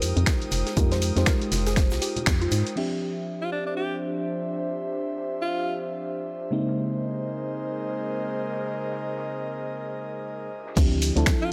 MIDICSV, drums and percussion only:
0, 0, Header, 1, 2, 480
1, 0, Start_track
1, 0, Tempo, 500000
1, 737, Time_signature, 4, 2, 24, 8
1, 11068, End_track
2, 0, Start_track
2, 0, Title_t, "Drums"
2, 18, Note_on_c, 9, 46, 99
2, 20, Note_on_c, 9, 82, 81
2, 21, Note_on_c, 9, 60, 52
2, 24, Note_off_c, 9, 82, 0
2, 24, Note_on_c, 9, 82, 62
2, 114, Note_off_c, 9, 46, 0
2, 117, Note_off_c, 9, 60, 0
2, 120, Note_off_c, 9, 82, 0
2, 155, Note_on_c, 9, 64, 77
2, 161, Note_on_c, 9, 42, 53
2, 163, Note_on_c, 9, 82, 35
2, 251, Note_off_c, 9, 64, 0
2, 253, Note_on_c, 9, 26, 117
2, 254, Note_on_c, 9, 38, 118
2, 257, Note_off_c, 9, 42, 0
2, 258, Note_on_c, 9, 42, 70
2, 259, Note_off_c, 9, 82, 0
2, 259, Note_on_c, 9, 36, 107
2, 259, Note_on_c, 9, 60, 77
2, 260, Note_on_c, 9, 82, 85
2, 261, Note_off_c, 9, 82, 0
2, 261, Note_on_c, 9, 82, 48
2, 349, Note_off_c, 9, 26, 0
2, 350, Note_off_c, 9, 38, 0
2, 354, Note_off_c, 9, 42, 0
2, 355, Note_off_c, 9, 36, 0
2, 355, Note_off_c, 9, 60, 0
2, 357, Note_off_c, 9, 82, 0
2, 400, Note_on_c, 9, 42, 36
2, 402, Note_on_c, 9, 82, 23
2, 405, Note_on_c, 9, 63, 61
2, 494, Note_on_c, 9, 38, 50
2, 496, Note_off_c, 9, 42, 0
2, 496, Note_off_c, 9, 82, 0
2, 496, Note_on_c, 9, 82, 71
2, 498, Note_on_c, 9, 46, 99
2, 500, Note_off_c, 9, 82, 0
2, 500, Note_on_c, 9, 82, 82
2, 501, Note_off_c, 9, 63, 0
2, 590, Note_off_c, 9, 38, 0
2, 594, Note_off_c, 9, 46, 0
2, 596, Note_off_c, 9, 82, 0
2, 635, Note_on_c, 9, 60, 53
2, 640, Note_on_c, 9, 42, 54
2, 641, Note_on_c, 9, 38, 37
2, 642, Note_on_c, 9, 82, 37
2, 731, Note_off_c, 9, 60, 0
2, 736, Note_off_c, 9, 42, 0
2, 737, Note_off_c, 9, 38, 0
2, 737, Note_off_c, 9, 82, 0
2, 737, Note_on_c, 9, 82, 76
2, 738, Note_on_c, 9, 42, 66
2, 739, Note_on_c, 9, 36, 111
2, 740, Note_off_c, 9, 82, 0
2, 740, Note_on_c, 9, 82, 44
2, 834, Note_off_c, 9, 42, 0
2, 835, Note_off_c, 9, 36, 0
2, 836, Note_off_c, 9, 82, 0
2, 870, Note_on_c, 9, 64, 85
2, 873, Note_on_c, 9, 60, 75
2, 880, Note_on_c, 9, 42, 39
2, 881, Note_on_c, 9, 38, 52
2, 882, Note_on_c, 9, 82, 22
2, 884, Note_on_c, 9, 63, 62
2, 966, Note_off_c, 9, 64, 0
2, 969, Note_off_c, 9, 60, 0
2, 976, Note_off_c, 9, 42, 0
2, 977, Note_off_c, 9, 38, 0
2, 977, Note_on_c, 9, 46, 96
2, 978, Note_off_c, 9, 82, 0
2, 978, Note_on_c, 9, 82, 71
2, 980, Note_off_c, 9, 63, 0
2, 980, Note_off_c, 9, 82, 0
2, 980, Note_on_c, 9, 82, 80
2, 1073, Note_off_c, 9, 46, 0
2, 1076, Note_off_c, 9, 82, 0
2, 1117, Note_on_c, 9, 38, 47
2, 1119, Note_on_c, 9, 42, 55
2, 1121, Note_on_c, 9, 82, 36
2, 1212, Note_on_c, 9, 26, 116
2, 1213, Note_off_c, 9, 38, 0
2, 1215, Note_off_c, 9, 42, 0
2, 1216, Note_off_c, 9, 82, 0
2, 1216, Note_on_c, 9, 82, 92
2, 1218, Note_on_c, 9, 38, 121
2, 1218, Note_on_c, 9, 42, 66
2, 1219, Note_on_c, 9, 36, 112
2, 1220, Note_off_c, 9, 82, 0
2, 1220, Note_on_c, 9, 60, 49
2, 1220, Note_on_c, 9, 82, 43
2, 1308, Note_off_c, 9, 26, 0
2, 1314, Note_off_c, 9, 38, 0
2, 1314, Note_off_c, 9, 42, 0
2, 1315, Note_off_c, 9, 36, 0
2, 1316, Note_off_c, 9, 60, 0
2, 1316, Note_off_c, 9, 82, 0
2, 1359, Note_on_c, 9, 42, 40
2, 1361, Note_on_c, 9, 82, 24
2, 1455, Note_off_c, 9, 42, 0
2, 1457, Note_off_c, 9, 82, 0
2, 1457, Note_on_c, 9, 46, 109
2, 1459, Note_on_c, 9, 38, 96
2, 1459, Note_on_c, 9, 82, 85
2, 1462, Note_off_c, 9, 82, 0
2, 1462, Note_on_c, 9, 82, 77
2, 1468, Note_on_c, 9, 60, 82
2, 1553, Note_off_c, 9, 46, 0
2, 1555, Note_off_c, 9, 38, 0
2, 1558, Note_off_c, 9, 82, 0
2, 1564, Note_off_c, 9, 60, 0
2, 1597, Note_on_c, 9, 82, 74
2, 1599, Note_on_c, 9, 42, 55
2, 1601, Note_off_c, 9, 82, 0
2, 1601, Note_on_c, 9, 82, 34
2, 1602, Note_on_c, 9, 38, 96
2, 1692, Note_on_c, 9, 26, 61
2, 1695, Note_off_c, 9, 42, 0
2, 1697, Note_off_c, 9, 82, 0
2, 1698, Note_off_c, 9, 38, 0
2, 1698, Note_on_c, 9, 42, 64
2, 1698, Note_on_c, 9, 82, 82
2, 1699, Note_on_c, 9, 36, 118
2, 1699, Note_on_c, 9, 38, 91
2, 1700, Note_off_c, 9, 82, 0
2, 1700, Note_on_c, 9, 82, 43
2, 1788, Note_off_c, 9, 26, 0
2, 1794, Note_off_c, 9, 42, 0
2, 1795, Note_off_c, 9, 36, 0
2, 1795, Note_off_c, 9, 38, 0
2, 1796, Note_off_c, 9, 82, 0
2, 1829, Note_on_c, 9, 82, 81
2, 1841, Note_off_c, 9, 82, 0
2, 1841, Note_on_c, 9, 82, 25
2, 1842, Note_on_c, 9, 38, 101
2, 1847, Note_on_c, 9, 60, 60
2, 1937, Note_off_c, 9, 82, 0
2, 1937, Note_on_c, 9, 46, 99
2, 1938, Note_off_c, 9, 38, 0
2, 1939, Note_on_c, 9, 82, 75
2, 1941, Note_off_c, 9, 82, 0
2, 1941, Note_on_c, 9, 82, 63
2, 1943, Note_off_c, 9, 60, 0
2, 2033, Note_off_c, 9, 46, 0
2, 2037, Note_off_c, 9, 82, 0
2, 2076, Note_on_c, 9, 64, 84
2, 2079, Note_on_c, 9, 42, 54
2, 2081, Note_on_c, 9, 82, 35
2, 2083, Note_on_c, 9, 60, 78
2, 2172, Note_off_c, 9, 64, 0
2, 2172, Note_on_c, 9, 26, 126
2, 2175, Note_off_c, 9, 42, 0
2, 2177, Note_off_c, 9, 82, 0
2, 2177, Note_on_c, 9, 42, 71
2, 2179, Note_off_c, 9, 60, 0
2, 2179, Note_on_c, 9, 36, 110
2, 2179, Note_on_c, 9, 82, 47
2, 2180, Note_on_c, 9, 38, 99
2, 2182, Note_off_c, 9, 82, 0
2, 2182, Note_on_c, 9, 82, 84
2, 2268, Note_off_c, 9, 26, 0
2, 2273, Note_off_c, 9, 42, 0
2, 2275, Note_off_c, 9, 36, 0
2, 2276, Note_off_c, 9, 38, 0
2, 2278, Note_off_c, 9, 82, 0
2, 2319, Note_on_c, 9, 42, 39
2, 2321, Note_on_c, 9, 82, 23
2, 2323, Note_on_c, 9, 63, 61
2, 2414, Note_off_c, 9, 82, 0
2, 2414, Note_on_c, 9, 82, 76
2, 2415, Note_off_c, 9, 42, 0
2, 2417, Note_on_c, 9, 46, 99
2, 2419, Note_off_c, 9, 63, 0
2, 2419, Note_off_c, 9, 82, 0
2, 2419, Note_on_c, 9, 82, 77
2, 2424, Note_on_c, 9, 60, 57
2, 2513, Note_off_c, 9, 46, 0
2, 2515, Note_off_c, 9, 82, 0
2, 2520, Note_off_c, 9, 60, 0
2, 2559, Note_on_c, 9, 42, 55
2, 2561, Note_on_c, 9, 82, 35
2, 2655, Note_off_c, 9, 42, 0
2, 2657, Note_off_c, 9, 82, 0
2, 2657, Note_on_c, 9, 49, 76
2, 2753, Note_off_c, 9, 49, 0
2, 4341, Note_on_c, 9, 38, 45
2, 4437, Note_off_c, 9, 38, 0
2, 4480, Note_on_c, 9, 38, 35
2, 4576, Note_off_c, 9, 38, 0
2, 4727, Note_on_c, 9, 38, 48
2, 4823, Note_off_c, 9, 38, 0
2, 4963, Note_on_c, 9, 38, 50
2, 5059, Note_off_c, 9, 38, 0
2, 6014, Note_on_c, 9, 82, 83
2, 6110, Note_off_c, 9, 82, 0
2, 6403, Note_on_c, 9, 38, 39
2, 6496, Note_on_c, 9, 82, 87
2, 6499, Note_off_c, 9, 38, 0
2, 6592, Note_off_c, 9, 82, 0
2, 6742, Note_on_c, 9, 82, 65
2, 6838, Note_off_c, 9, 82, 0
2, 6975, Note_on_c, 9, 82, 80
2, 7071, Note_off_c, 9, 82, 0
2, 7222, Note_on_c, 9, 82, 67
2, 7318, Note_off_c, 9, 82, 0
2, 7452, Note_on_c, 9, 82, 70
2, 7548, Note_off_c, 9, 82, 0
2, 8173, Note_on_c, 9, 38, 46
2, 8269, Note_off_c, 9, 38, 0
2, 8311, Note_on_c, 9, 38, 42
2, 8407, Note_off_c, 9, 38, 0
2, 8413, Note_on_c, 9, 82, 76
2, 8509, Note_off_c, 9, 82, 0
2, 8556, Note_on_c, 9, 38, 47
2, 8652, Note_off_c, 9, 38, 0
2, 8801, Note_on_c, 9, 38, 45
2, 8897, Note_off_c, 9, 38, 0
2, 8901, Note_on_c, 9, 82, 81
2, 8997, Note_off_c, 9, 82, 0
2, 9134, Note_on_c, 9, 82, 61
2, 9230, Note_off_c, 9, 82, 0
2, 9376, Note_on_c, 9, 82, 81
2, 9472, Note_off_c, 9, 82, 0
2, 9611, Note_on_c, 9, 82, 67
2, 9707, Note_off_c, 9, 82, 0
2, 9859, Note_on_c, 9, 82, 76
2, 9955, Note_off_c, 9, 82, 0
2, 10098, Note_on_c, 9, 82, 66
2, 10194, Note_off_c, 9, 82, 0
2, 10242, Note_on_c, 9, 38, 42
2, 10337, Note_on_c, 9, 42, 65
2, 10337, Note_on_c, 9, 49, 100
2, 10338, Note_off_c, 9, 38, 0
2, 10338, Note_on_c, 9, 36, 123
2, 10339, Note_on_c, 9, 82, 86
2, 10340, Note_off_c, 9, 82, 0
2, 10340, Note_on_c, 9, 82, 44
2, 10433, Note_off_c, 9, 42, 0
2, 10433, Note_off_c, 9, 49, 0
2, 10434, Note_off_c, 9, 36, 0
2, 10436, Note_off_c, 9, 82, 0
2, 10475, Note_on_c, 9, 64, 82
2, 10478, Note_on_c, 9, 63, 69
2, 10482, Note_on_c, 9, 82, 22
2, 10483, Note_on_c, 9, 60, 56
2, 10571, Note_off_c, 9, 64, 0
2, 10574, Note_off_c, 9, 63, 0
2, 10577, Note_off_c, 9, 82, 0
2, 10577, Note_on_c, 9, 82, 68
2, 10578, Note_on_c, 9, 46, 105
2, 10579, Note_off_c, 9, 60, 0
2, 10580, Note_off_c, 9, 82, 0
2, 10580, Note_on_c, 9, 82, 74
2, 10674, Note_off_c, 9, 46, 0
2, 10676, Note_off_c, 9, 82, 0
2, 10719, Note_on_c, 9, 42, 54
2, 10721, Note_on_c, 9, 82, 34
2, 10812, Note_on_c, 9, 26, 124
2, 10814, Note_on_c, 9, 60, 85
2, 10815, Note_off_c, 9, 42, 0
2, 10816, Note_on_c, 9, 38, 113
2, 10817, Note_off_c, 9, 82, 0
2, 10817, Note_on_c, 9, 42, 73
2, 10818, Note_on_c, 9, 36, 119
2, 10818, Note_on_c, 9, 82, 89
2, 10819, Note_off_c, 9, 82, 0
2, 10819, Note_on_c, 9, 82, 43
2, 10908, Note_off_c, 9, 26, 0
2, 10910, Note_off_c, 9, 60, 0
2, 10912, Note_off_c, 9, 38, 0
2, 10913, Note_off_c, 9, 42, 0
2, 10914, Note_off_c, 9, 36, 0
2, 10915, Note_off_c, 9, 82, 0
2, 10961, Note_on_c, 9, 82, 23
2, 11057, Note_off_c, 9, 82, 0
2, 11068, End_track
0, 0, End_of_file